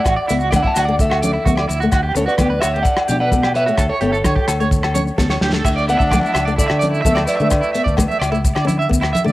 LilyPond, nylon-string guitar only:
\new Staff \with { instrumentName = "Nylon-string guitar" } { \time 4/4 \key d \major \tempo 4 = 129 r8 b8 a8 r16 a8 r16 cis'8 b8 r16 a16 | r8 cis'8 b8 r4 d'8 b8 r16 a16 | r8 b8 r8. a8 r16 cis'8 b8 r16 a16 | r8 b8 a8 r16 a8 r16 cis'8 b8 r16 a16 |
r8 b8 a8 r16 a8 r16 cis'8 b8 r16 a16 | }